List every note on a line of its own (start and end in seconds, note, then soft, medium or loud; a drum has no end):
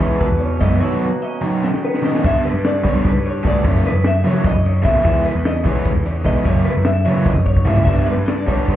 0.00 0.82 E2 medium
0.00 0.09 E3 loud
0.00 0.27 E3 medium
0.00 0.62 E3 medium
0.00 0.27 G#3 medium
0.00 0.80 G#3 medium
0.00 0.26 B3 medium
0.00 0.42 C#4 medium
0.00 0.26 E4 medium
0.00 0.80 F#4 medium
0.00 0.21 C#5 medium
0.00 kick medium
0.00 ride medium
0.09 0.19 E3 medium
0.20 0.62 B2 medium
0.20 0.39 B4 medium
0.20 kick loud
0.20 ride loud
0.30 0.58 E2 medium
0.39 0.60 C#5 medium
0.39 ride medium
0.45 0.81 C#4 medium
0.60 0.80 F#2 loud
0.60 0.79 E3 medium
0.60 0.80 E3 medium
0.60 0.80 G#3 medium
0.60 0.80 B3 medium
0.60 0.80 E4 medium
0.60 0.80 D#5 medium
0.60 kick medium
0.60 ride medium
0.80 1.43 B2 medium
0.80 1.07 D#3 medium
0.80 1.07 F#3 medium
0.80 1.07 B3 medium
0.80 1.07 D#4 loud
0.80 0.94 E4 medium
0.80 1.01 C#5 medium
0.94 2.24 F#4 medium
1.01 2.22 A#3 medium
1.01 1.22 B4 medium
1.22 1.83 C#4 medium
1.22 1.42 D#5 medium
1.41 1.68 D#3 medium
1.41 2.03 D#3 medium
1.41 1.68 F#3 medium
1.41 1.68 B3 medium
1.41 1.68 D#4 medium
1.41 1.64 C#5 medium
1.64 2.22 F#2 medium
1.64 1.83 D#5 medium
1.64 snare medium
1.74 snare medium
1.85 1.95 B3 medium
1.85 2.04 B4 medium
1.94 2.24 C#4 soft
1.94 snare medium
2.03 2.23 D#3 medium
2.03 2.22 D#3 medium
2.03 2.23 F#3 medium
2.03 2.23 B3 medium
2.03 2.24 D#4 medium
2.03 2.24 D#5 medium
2.03 snare medium
2.15 snare medium
2.23 2.42 G2 loud
2.23 2.49 D3 medium
2.23 2.49 G3 medium
2.23 2.50 B3 loud
2.23 2.50 D4 medium
2.23 2.44 E5 medium
2.23 kick loud
2.23 crash loud
2.45 2.64 B4 medium
2.45 ride medium
2.54 2.81 G2 loud
2.65 2.84 D5 medium
2.65 snare loud
2.65 ride loud
2.84 3.10 D3 medium
2.84 3.10 G3 medium
2.84 2.93 G3 loud
2.84 3.10 B3 medium
2.84 3.10 D4 loud
2.84 3.05 C#5 medium
2.84 kick medium
2.84 ride medium
2.95 3.04 G3 medium
3.05 3.25 B4 medium
3.05 kick loud
3.05 ride loud
3.16 3.43 G2 medium
3.26 3.45 C#5 medium
3.26 ride medium
3.43 3.63 D2 loud
3.43 3.64 D3 medium
3.43 3.64 G3 medium
3.43 3.64 B3 medium
3.43 3.64 D4 medium
3.43 kick medium
3.43 ride medium
3.47 3.66 D5 medium
3.65 3.83 F#2 medium
3.65 3.90 C#3 medium
3.65 3.91 E3 medium
3.65 3.91 A#3 loud
3.65 3.91 E4 loud
3.65 3.85 C#5 medium
3.65 kick loud
3.65 ride loud
3.85 4.06 B4 medium
3.85 ride medium
3.94 4.22 F#2 loud
4.04 4.26 E5 loud
4.04 snare loud
4.04 ride loud
4.24 4.51 C#3 medium
4.24 4.51 E3 medium
4.24 4.33 F#3 loud
4.24 4.50 A#3 medium
4.24 4.50 E4 loud
4.24 4.46 C#5 medium
4.24 ride medium
4.33 4.43 F#3 medium
4.44 4.66 D#5 medium
4.44 kick loud
4.44 ride loud
4.55 4.82 F#2 medium
4.65 4.84 C#5 medium
4.65 snare soft
4.65 ride medium
4.82 5.03 B1 loud
4.82 5.03 C#3 medium
4.82 5.02 E3 medium
4.82 5.04 A#3 medium
4.82 5.03 E4 medium
4.82 5.04 E5 medium
4.82 kick medium
4.82 ride medium
5.03 5.24 E2 loud
5.03 5.30 E3 medium
5.03 5.30 G#3 loud
5.03 5.31 B3 medium
5.03 5.31 E4 loud
5.03 5.25 E5 medium
5.03 kick loud
5.03 crash loud
5.26 5.45 B4 medium
5.26 ride medium
5.35 5.63 E2 loud
5.45 5.66 D#5 loud
5.45 snare loud
5.45 ride loud
5.64 5.74 E3 loud
5.64 5.91 E3 medium
5.64 5.91 G#3 medium
5.64 5.91 B3 medium
5.64 5.91 E4 loud
5.64 5.87 C#5 medium
5.64 kick medium
5.64 ride medium
5.75 5.84 E3 medium
5.85 6.06 B4 medium
5.85 kick loud
5.85 ride loud
5.95 6.23 E2 medium
6.06 6.26 C#5 medium
6.06 snare soft
6.06 ride medium
6.24 6.44 B1 loud
6.24 6.45 E3 medium
6.24 6.45 G#3 medium
6.24 6.45 B3 medium
6.24 6.45 E4 medium
6.24 6.46 D#5 medium
6.24 kick medium
6.24 ride medium
6.45 6.64 F#2 medium
6.45 6.72 C#3 medium
6.45 6.72 E3 medium
6.45 6.72 A#3 loud
6.45 6.72 E4 loud
6.45 6.66 C#5 medium
6.45 kick loud
6.45 ride loud
6.65 6.86 B4 medium
6.65 ride medium
6.77 7.04 F#2 loud
6.85 7.06 E5 medium
6.85 snare loud
6.85 ride loud
7.05 7.32 C#3 medium
7.05 7.32 E3 medium
7.05 7.15 F#3 loud
7.05 7.32 A#3 medium
7.05 7.32 E4 loud
7.05 7.25 C#5 medium
7.05 ride medium
7.15 7.25 F#3 medium
7.25 7.45 D#5 medium
7.25 kick loud
7.35 7.64 F#2 medium
7.35 high tom medium
7.46 7.65 C#5 medium
7.46 kick medium
7.57 kick medium
7.65 7.86 C#2 loud
7.65 7.86 C#3 medium
7.65 7.86 E3 medium
7.65 7.86 A#3 medium
7.65 7.87 E4 medium
7.65 7.84 E5 medium
7.65 floor tom loud
7.77 floor tom medium
7.85 8.06 G2 loud
7.85 8.13 D3 medium
7.85 8.13 G3 loud
7.85 8.13 B3 loud
7.85 8.13 D4 loud
7.85 8.06 E5 medium
7.85 kick loud
7.85 crash loud
8.07 8.26 B4 medium
8.07 ride medium
8.17 8.45 G2 loud
8.26 8.47 D5 loud
8.26 snare loud
8.26 ride loud
8.47 8.74 D3 medium
8.47 8.74 G3 medium
8.47 8.56 G3 loud
8.47 8.74 B3 medium
8.47 8.73 D4 loud
8.47 8.69 C#5 medium
8.47 kick medium
8.47 snare soft
8.47 ride medium
8.57 8.66 G3 medium
8.68 8.76 B4 medium
8.68 kick loud
8.68 ride loud